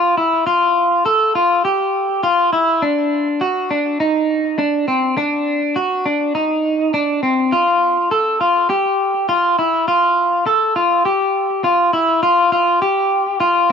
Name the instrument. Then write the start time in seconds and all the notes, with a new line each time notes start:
clean electric guitar
Already playing: F4
0.17 E4
0.47 F4
1.06 A4
1.35 F4
1.65 G4
2.23 F4
2.53 E4
2.82 D4
3.41 F#4
3.71 D4
4.00 D#4
4.58 D4
4.88 C4
5.17 D4
5.76 F#4
6.06 D4
6.35 D#4
6.94 D4
7.23 C4
7.52 F4
8.11 A4
8.41 F4
8.70 G4
9.29 F4
9.59 E4
9.88 F4
10.46 A4
10.76 F4
11.05 G4
11.64 F4
11.93 E4
12.23 F4
12.52 F4
12.82 G4
13.40 F4